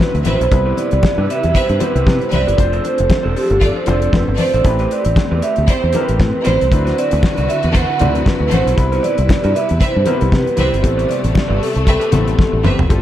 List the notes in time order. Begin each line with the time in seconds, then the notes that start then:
Already playing: D3 F#3 C4 D4 E4 F#4 B4
0.00 B4, kick, snare, high conga
0.15 D2, muted clean electric guitar stroke, closed hi-hat
0.25 A1 C4 F#4 B4 C5 E5, closed hi-hat, high conga
0.41 B1, muted clean electric guitar stroke, closed hi-hat
0.51 C2 C3 G3 B3 C4 E4 B4, muted clean electric guitar stroke, kick, closed hi-hat
0.66 E4 G4 B4
0.77 E4 G4 B4 D5, closed hi-hat, muted conga
0.91 C2, muted clean electric guitar stroke, closed hi-hat
1.03 muted clean electric guitar stroke, kick, snare, high conga
1.18 G2 E4 G4 B4
1.29 E4 G4 B4 E5, closed hi-hat
1.43 E2, muted clean electric guitar stroke, closed hi-hat
1.55 C4 B4 C5 E5, muted clean electric guitar stroke, kick, closed hi-hat, muted conga
1.69 G2, muted clean electric guitar stroke, closed hi-hat
1.79 G3 B3 C4 E4 G4 B4 C5, closed hi-hat, muted conga
1.95 C2 E4 G4 C5, closed hi-hat
2.06 C3 E4 G4 B4, kick, snare, high conga
2.20 C5, muted clean electric guitar stroke, closed hi-hat
2.31 C2 C4 B4 D5 E5, muted clean electric guitar stroke, closed hi-hat, high conga
2.47 G1 E4 G4 B4, closed hi-hat
2.57 F1 F3 A3 C4 D4 F4 A4 C5, kick, closed hi-hat
2.72 D4 A4 C5, closed hi-hat
2.84 D4 A4 C5, closed hi-hat, muted conga
2.98 F1, muted clean electric guitar stroke, closed hi-hat
3.10 muted clean electric guitar stroke, kick, snare, high conga
3.23 E1 D4 A4 C5
3.36 D4 G4 A4 C5, open hi-hat
3.50 G1, muted clean electric guitar stroke, closed hi-hat
3.61 A3 F4 A4 D5, muted clean electric guitar stroke, kick, closed hi-hat, muted conga
3.76 C5, muted clean electric guitar stroke
3.86 F1 A3 C4 D4 F4 A4 C5 D5, closed hi-hat, muted conga
4.02 D4 A4 D5, closed hi-hat
4.13 F1 D4 A4 B4 C5, kick, snare, high conga
4.28 G1, muted clean electric guitar stroke
4.37 A3 F4 C5 D5, muted clean electric guitar stroke, open hi-hat, high conga
4.54 A1 D4 A4 C5, closed hi-hat
4.64 A1 A3 C4 E4 G4 B4, muted clean electric guitar stroke, kick, closed hi-hat
4.79 C4 G4 B4, closed hi-hat
4.91 C4 G4 B4 D5, closed hi-hat
5.05 A1, muted clean electric guitar stroke, closed hi-hat
5.16 muted clean electric guitar stroke, kick, snare, high conga
5.31 E2 C4 G4 B4
5.42 C4 G4 B4 E5, closed hi-hat
5.56 D2, muted clean electric guitar stroke, closed hi-hat
5.68 G3 E4 C5, muted clean electric guitar stroke, kick, closed hi-hat, muted conga
5.82 E2, muted clean electric guitar stroke
5.93 A3 C4 E4 G4 A#4 B4 C5, closed hi-hat, muted conga
6.02 B4
6.07 A1 C4 G4 C5, closed hi-hat
6.20 A2 B4, kick, snare, high conga
6.32 muted clean electric guitar stroke
6.44 A1 G3 C4 E4 G4 B4 C5, closed hi-hat, high conga
6.59 C2, muted clean electric guitar stroke, closed hi-hat
6.71 D2 D3 F#3 C4 D4 E4 F#4 B4, muted clean electric guitar stroke, kick, closed hi-hat
6.85 C4 F#4 B4, snare, closed hi-hat
6.97 C4 F#4 B4 D5, closed hi-hat
7.11 D2, muted clean electric guitar stroke, closed hi-hat
7.23 muted clean electric guitar stroke, kick, snare, high conga
7.37 C2 C4 F#4 B4, closed hi-hat
7.48 C4 F#4 B4 E5, closed hi-hat
7.63 E2, muted clean electric guitar stroke, closed hi-hat
7.73 A3 F#4 C5 F#5, muted clean electric guitar stroke, kick, closed hi-hat, muted conga
7.89 muted clean electric guitar stroke
7.99 D2 F#3 C4 D4 E4 F#4 B4 C5 D5, closed hi-hat, muted conga, low conga
8.14 C4 F#4 C5, closed hi-hat
8.26 B4, kick, snare, high conga
8.40 D2, muted clean electric guitar stroke
8.51 A1 A3 C4 F#4 B4 C5, closed hi-hat, high conga
8.66 B1, muted clean electric guitar stroke, closed hi-hat
8.76 C2 C3 G3 B3 C4 E4 B4, muted clean electric guitar stroke, kick, closed hi-hat
8.92 E4 G4 B4, closed hi-hat
9.03 E4 G4 B4 D5, closed hi-hat, muted conga
9.18 C2, muted clean electric guitar stroke, closed hi-hat
9.29 muted clean electric guitar stroke, kick, snare, high conga
9.43 G2 E4 G4 B4, closed hi-hat
9.55 E4 G4 B4 E5, closed hi-hat
9.69 E2, muted clean electric guitar stroke, closed hi-hat
9.80 C4 B4 C5 E5, kick, closed hi-hat, muted conga
9.96 G2, muted clean electric guitar stroke
10.06 G3 B3 C4 E4 G4 A#4 B4 C5, closed hi-hat, muted conga
10.13 B4
10.21 C2, muted clean electric guitar stroke, closed hi-hat
10.32 C3 B4, kick, snare, high conga
10.46 muted clean electric guitar stroke, closed hi-hat
10.57 C2 C4 E4 G4 B4 C5 E5, closed hi-hat, high conga
10.72 G1, muted clean electric guitar stroke, closed hi-hat
10.82 A1 G3 A3 B3 C4 E4 A4, muted clean electric guitar stroke, kick, closed hi-hat
10.97 C4 G4 B4, closed hi-hat
11.08 C4 G4 B4 D5, closed hi-hat, muted conga
11.22 A1, muted clean electric guitar stroke, closed hi-hat
11.34 muted clean electric guitar stroke, kick, snare, high conga
11.48 G1 C4 G4 B4
11.60 C4 G4 A4 B4, open hi-hat
11.74 C2, muted clean electric guitar stroke, closed hi-hat
11.84 C4 B4 E5, muted clean electric guitar stroke, kick, closed hi-hat, muted conga
12.00 C4 G4 B4, closed hi-hat
12.11 A1 G3 B3 C4 E4 G4 A4 C5, closed hi-hat, muted conga, low conga
12.26 muted clean electric guitar stroke, closed hi-hat
12.39 kick, snare, high conga
12.52 A1, muted clean electric guitar stroke
12.64 G1 C4 G4 B4 E5, mid tom, high conga
12.78 F1, muted clean electric guitar stroke, floor tom
12.89 G1 G3 C4 F4 A4 D5, muted clean electric guitar stroke, kick, closed hi-hat